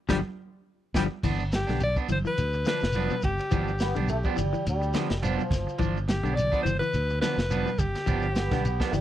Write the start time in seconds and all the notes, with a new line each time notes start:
0.09 G1 D3 F3 G3 B3 D4, kick, snare, high conga, shekere
0.94 G1 D3 F3 G3 B3 D4, kick, snare, high conga, shekere
1.23 G1 E3 B3 D4, muted clean electric guitar stroke, kick, crash, high conga, low conga, shekere
1.40 shekere
1.52 G4, muted clean electric guitar stroke, snare, ride bell, high conga, shekere
1.67 B1 D3 B3 D4, snare, high conga, shekere
1.80 D5, muted clean electric guitar stroke, ride bell, high conga, shekere
1.96 B3 D4, muted fingered electric bass stroke, muted clean electric guitar stroke, kick, shekere
2.09 G1 E3 C5, muted clean electric guitar stroke, ride bell, high conga, low conga, shekere
2.25 E3 B4, muted clean electric guitar stroke, shekere
2.38 D2, ride bell, shekere
2.53 muted clean electric guitar stroke, shekere
2.65 D3 F3 D4 B4, snare, ride bell, high conga, shekere
2.81 F1, muted clean electric guitar stroke, snare, shekere
2.92 F3 B3 D4, ride bell, high conga, shekere
3.10 B2, high conga, shekere
3.22 G1 G4, muted clean electric guitar stroke, kick, ride bell, low conga, shekere
3.38 muted clean electric guitar stroke, ride bell, shekere
3.51 G1 E3 F3 B3 D4, kick, ride bell, high conga, shekere
3.68 shekere
3.79 B3, muted clean electric guitar stroke, snare, ride bell, high conga, shekere
3.95 B1 D3 B3 D4, ride bell, shekere
3.99 high conga
4.08 A3, muted clean electric guitar stroke, ride bell, shekere
4.24 F3 G3 B3 D4, muted fingered electric bass stroke, kick, shekere
4.36 G1 E3, muted clean electric guitar stroke, ride bell, low conga, shekere
4.53 E3, muted clean electric guitar stroke, shekere
4.66 D2 G3, ride bell, shekere
4.82 muted clean electric guitar stroke, shekere
4.94 D3 F3 B3 D4, snare, ride bell, high conga, shekere
5.09 F1, muted clean electric guitar stroke, snare, ride bell, shekere
5.17 G3
5.23 F3 B3 D4, ride bell, high conga, shekere
5.38 B2, high conga, shekere
5.51 G1, muted clean electric guitar stroke, kick, snare, ride bell, low conga, shekere
5.67 muted clean electric guitar stroke, shekere
5.78 G1 E3 F3 D4, muted clean electric guitar stroke, kick, ride bell, high conga, shekere
5.97 shekere
6.08 G4, muted clean electric guitar stroke, snare, ride bell, high conga, shekere
6.23 B1 D3 B3 D4, high conga, shekere
6.35 D5, muted clean electric guitar stroke, ride bell, shekere
6.40 high conga, low conga
6.52 F3 B3 D4, kick, shekere
6.63 G1 E3 C5, ride bell, shekere
6.67 low conga
6.79 E3 B4, muted clean electric guitar stroke, shekere
6.93 D2, ride bell, high conga, shekere
7.10 muted clean electric guitar stroke, shekere
7.21 D3 F3 B3 D4 B4, snare, ride bell, high conga, shekere
7.38 F1, muted clean electric guitar stroke, snare, shekere
7.50 F3 B3 D4, ride bell, high conga, shekere
7.66 B2, high conga, shekere
7.78 G1 G4, muted clean electric guitar stroke, kick, ride bell, low conga, shekere
7.95 muted clean electric guitar stroke, snare, ride bell, shekere
8.06 G1 F3 B3 D4, muted clean electric guitar stroke, kick, ride bell, high conga, low conga, shekere
8.22 shekere
8.30 C4
8.35 B3, muted clean electric guitar stroke, snare, ride bell, high conga, shekere
8.51 B1 D3 B3 D4, kick, snare, ride bell, high conga, shekere
8.64 muted clean electric guitar stroke, ride bell, high conga, shekere
8.80 F3 B3 D4, muted fingered electric bass stroke, kick, snare, shekere
8.92 G1 E3 G3, muted clean electric guitar stroke, open hi-hat, low conga, shekere